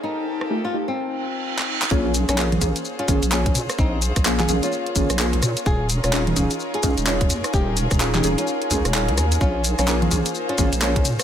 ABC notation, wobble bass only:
X:1
M:4/4
L:1/16
Q:"Swing 16ths" 1/4=128
K:Bbdor
V:1 name="Wobble bass" clef=bass
z16 | B,,,3 B,,,3 B,,, z3 A,,, B,,,2 B,,, B,, z | B,,,3 B,,,3 B,,, z3 A,,, B,,,2 B,,, B,, z | E,,,3 E,,,3 E,,, z3 D,, E,,,2 E,,, E,, z |
E,,,3 E,,,3 E,,, z3 D,, E,,,2 D,, E,,2 | B,,,3 B,,,3 B,,, z3 A,,, B,,,2 B,,, B,, z |]